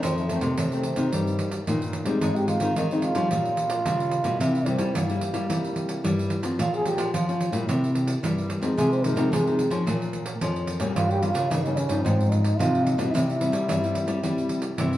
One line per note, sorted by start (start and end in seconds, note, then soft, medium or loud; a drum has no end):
0.00 0.55 F2 medium
0.00 0.25 D#3 medium
0.00 0.38 F3 medium
0.00 0.25 A3 medium
0.00 0.25 C4 medium
0.00 0.16 C4 medium
0.00 pandeiro medium
0.17 0.28 A3 medium
0.17 pandeiro soft
0.28 0.38 D#3 medium
0.28 0.41 A3 medium
0.28 0.38 A3 medium
0.28 0.38 C4 medium
0.28 pandeiro medium
0.41 0.54 C3 medium
0.41 0.66 D#3 medium
0.41 0.66 A3 medium
0.41 0.66 C4 medium
0.41 pandeiro medium
0.57 0.92 C3 medium
0.57 1.10 C3 medium
0.57 1.63 C4 medium
0.57 pandeiro medium
0.72 0.95 D#3 medium
0.72 0.95 A3 medium
0.72 0.95 C4 medium
0.72 pandeiro soft
0.83 pandeiro medium
0.96 1.09 C3 medium
0.96 1.48 D#3 medium
0.96 1.48 A#3 medium
0.96 1.48 D#4 medium
0.96 pandeiro medium
1.12 1.65 G2 medium
1.12 1.59 G3 medium
1.12 pandeiro medium
1.27 pandeiro soft
1.39 pandeiro medium
1.51 pandeiro medium
1.67 2.19 G2 medium
1.67 2.02 A#2 loud
1.67 1.93 D#3 medium
1.67 1.93 A#3 soft
1.67 1.93 D#4 medium
1.67 pandeiro medium
1.82 pandeiro soft
1.93 pandeiro medium
2.05 2.19 G3 medium
2.05 2.44 G#3 medium
2.05 2.44 C4 medium
2.05 2.44 D#4 medium
2.05 pandeiro medium
2.21 2.74 G#2 medium
2.21 2.57 G#3 loud
2.21 2.37 D#4 loud
2.21 pandeiro medium
2.36 2.49 G4 medium
2.36 pandeiro soft
2.48 2.57 G#3 medium
2.48 2.57 C4 medium
2.48 2.57 D#4 medium
2.48 2.78 F4 medium
2.48 pandeiro medium
2.60 2.73 D#3 medium
2.60 2.85 G#3 medium
2.60 2.85 C4 medium
2.60 2.85 D#4 medium
2.60 pandeiro medium
2.76 3.11 D#3 medium
2.76 3.29 D#3 soft
2.76 2.90 D#4 medium
2.76 pandeiro medium
2.91 3.14 G#3 medium
2.91 3.14 C4 medium
2.91 3.03 D#4 medium
2.91 3.14 D#4 medium
2.91 pandeiro soft
3.02 3.30 F4 medium
3.02 pandeiro medium
3.15 3.28 F3 medium
3.15 3.67 G3 medium
3.15 3.67 C#4 medium
3.15 3.67 F4 medium
3.15 pandeiro medium
3.31 3.78 A#2 medium
3.31 3.83 A#2 medium
3.31 4.41 F4 loud
3.31 pandeiro medium
3.45 pandeiro soft
3.57 pandeiro medium
3.70 pandeiro medium
3.86 4.38 A#2 medium
3.86 4.21 C#3 loud
3.86 4.22 G3 soft
3.86 4.23 C#4 medium
3.86 4.23 F4 medium
3.86 pandeiro medium
4.00 pandeiro soft
4.11 pandeiro medium
4.24 4.37 B2 medium
4.24 4.62 G3 medium
4.24 4.62 A#3 medium
4.24 4.63 E4 medium
4.24 pandeiro medium
4.40 4.92 C3 medium
4.40 4.75 C3 loud
4.40 4.54 E4 medium
4.40 pandeiro medium
4.55 4.68 E4 medium
4.55 pandeiro soft
4.66 4.75 G3 medium
4.66 4.76 A#3 medium
4.66 4.96 C4 medium
4.66 4.76 E4 medium
4.66 pandeiro medium
4.79 5.03 G3 medium
4.79 4.92 G3 medium
4.79 5.04 A#3 medium
4.79 5.04 E4 medium
4.79 pandeiro medium
4.95 5.47 G2 medium
4.95 5.30 G3 medium
4.95 6.04 A#3 medium
4.95 pandeiro medium
5.10 5.32 G3 medium
5.10 5.32 A#3 medium
5.10 5.33 E4 medium
5.10 pandeiro soft
5.21 pandeiro medium
5.33 5.44 G3 medium
5.33 5.46 G3 medium
5.33 5.44 A#3 medium
5.33 5.44 E4 medium
5.33 pandeiro medium
5.49 6.01 C3 medium
5.49 6.00 G3 medium
5.49 5.96 G3 medium
5.49 6.00 A#3 medium
5.49 6.00 E4 medium
5.49 pandeiro medium
5.64 pandeiro soft
5.76 pandeiro medium
5.89 pandeiro medium
6.04 6.56 G2 medium
6.04 6.39 G3 medium
6.04 6.30 G3 medium
6.04 6.30 A#3 medium
6.04 6.30 E4 medium
6.04 pandeiro medium
6.19 pandeiro soft
6.30 pandeiro medium
6.43 6.81 F3 medium
6.43 6.55 C4 medium
6.43 6.81 C#4 medium
6.43 6.81 F4 medium
6.43 pandeiro medium
6.59 7.11 A#2 soft
6.59 6.94 A#2 loud
6.59 6.77 F4 medium
6.59 pandeiro medium
6.74 6.87 G#4 loud
6.74 pandeiro soft
6.85 7.12 F3 medium
6.85 7.12 C#4 medium
6.85 7.12 F4 medium
6.85 7.13 G4 medium
6.85 pandeiro medium
6.98 7.10 F3 medium
6.98 pandeiro medium
7.13 7.49 F3 medium
7.13 7.27 F3 medium
7.13 7.26 F4 medium
7.13 pandeiro medium
7.28 7.51 F3 medium
7.28 7.51 C#4 medium
7.28 7.53 F4 medium
7.28 7.51 F4 medium
7.28 pandeiro soft
7.41 pandeiro medium
7.52 7.65 A#2 medium
7.52 8.04 G3 medium
7.52 8.04 A#3 medium
7.52 8.04 E4 medium
7.52 pandeiro medium
7.68 8.15 C3 medium
7.68 8.21 C3 medium
7.68 pandeiro medium
7.84 pandeiro soft
7.95 pandeiro medium
8.07 pandeiro medium
8.23 8.75 G2 soft
8.23 8.58 G3 loud
8.23 8.49 G3 medium
8.23 8.49 A#3 medium
8.23 8.49 E4 medium
8.23 pandeiro medium
8.38 pandeiro soft
8.50 pandeiro medium
8.61 9.00 F3 medium
8.61 9.00 G#3 medium
8.61 8.74 C4 medium
8.61 9.00 D#4 medium
8.61 pandeiro medium
8.77 9.12 C3 loud
8.77 9.30 C3 medium
8.77 8.94 G#4 medium
8.77 pandeiro medium
8.92 9.06 C5 medium
8.92 pandeiro soft
9.04 9.13 F3 medium
9.04 9.13 G#3 medium
9.04 9.13 D#4 medium
9.04 9.35 A#4 medium
9.04 pandeiro medium
9.16 9.29 C3 medium
9.16 9.41 F3 medium
9.16 9.41 G#3 medium
9.16 9.41 D#4 medium
9.16 pandeiro medium
9.32 9.67 C3 medium
9.32 9.84 C3 medium
9.32 9.46 G#4 medium
9.32 pandeiro medium
9.47 9.69 F3 soft
9.47 9.69 G#3 medium
9.47 9.70 D#4 medium
9.47 9.72 G#4 medium
9.47 pandeiro soft
9.59 pandeiro medium
9.70 9.83 F3 medium
9.70 10.22 F3 medium
9.70 10.22 A#3 medium
9.70 10.23 C#4 medium
9.70 pandeiro medium
9.87 10.33 A#2 medium
9.87 10.39 A#2 medium
9.87 pandeiro medium
10.02 pandeiro soft
10.13 pandeiro medium
10.26 pandeiro medium
10.41 10.93 F2 medium
10.41 10.76 F3 loud
10.41 10.78 F3 medium
10.41 10.78 A#3 medium
10.41 10.78 C#4 medium
10.41 pandeiro medium
10.56 pandeiro soft
10.67 pandeiro medium
10.80 10.93 A#2 medium
10.80 11.18 G3 medium
10.80 11.18 A#3 medium
10.80 11.18 C#4 medium
10.80 pandeiro medium
10.96 11.31 G2 loud
10.96 11.48 G2 medium
10.96 11.12 F4 loud
10.96 pandeiro medium
11.11 11.24 G4 loud
11.11 pandeiro soft
11.22 11.60 G3 medium
11.22 11.60 A#3 medium
11.22 11.60 C#4 medium
11.22 11.52 F4 medium
11.22 pandeiro medium
11.34 11.47 C#3 medium
11.34 pandeiro medium
11.50 12.03 G2 medium
11.50 11.85 C#3 medium
11.50 11.64 D#4 medium
11.50 pandeiro medium
11.65 11.88 G3 medium
11.65 11.88 A#3 medium
11.65 11.88 C#4 medium
11.65 11.78 D#4 medium
11.65 pandeiro soft
11.77 12.06 C#4 medium
11.77 pandeiro medium
11.89 12.02 G2 medium
11.89 12.41 F3 medium
11.89 12.41 C4 medium
11.89 12.41 D#4 medium
11.89 pandeiro medium
12.04 12.51 G#2 medium
12.04 12.57 G#2 medium
12.04 12.32 C4 medium
12.04 pandeiro medium
12.21 pandeiro soft
12.30 12.60 D#4 loud
12.30 pandeiro medium
12.44 pandeiro medium
12.58 13.12 G#2 medium
12.58 12.94 C3 loud
12.58 12.96 F3 medium
12.58 12.97 C4 medium
12.58 12.97 D#4 medium
12.58 12.86 F4 loud
12.58 pandeiro medium
12.75 pandeiro soft
12.84 13.14 D#4 medium
12.84 pandeiro medium
12.98 13.11 B2 medium
12.98 13.36 G3 medium
12.98 13.36 C4 medium
12.98 13.37 E4 medium
12.98 pandeiro medium
13.12 13.49 C3 loud
13.12 13.66 C3 medium
13.12 14.77 E4 loud
13.12 pandeiro medium
13.30 pandeiro soft
13.41 13.78 G3 medium
13.41 13.78 C4 medium
13.41 13.78 E4 medium
13.41 pandeiro medium
13.52 13.65 G3 medium
13.52 pandeiro medium
13.68 14.21 G2 medium
13.68 14.03 G3 medium
13.68 pandeiro medium
13.84 14.06 G3 medium
13.84 14.06 C4 medium
13.84 14.06 E4 medium
13.84 pandeiro soft
13.95 pandeiro medium
14.07 14.20 G3 medium
14.07 14.18 G3 medium
14.07 14.18 C4 medium
14.07 14.18 E4 medium
14.07 pandeiro medium
14.23 14.75 C3 medium
14.23 14.70 G3 medium
14.23 14.59 G3 medium
14.23 14.59 C4 medium
14.23 14.59 E4 medium
14.23 pandeiro medium
14.38 pandeiro soft
14.49 pandeiro medium
14.62 pandeiro medium
14.78 14.98 G2 medium
14.78 14.98 C3 medium
14.78 14.98 G3 soft
14.78 14.98 C4 medium
14.78 14.98 E4 medium
14.78 pandeiro medium
14.93 pandeiro soft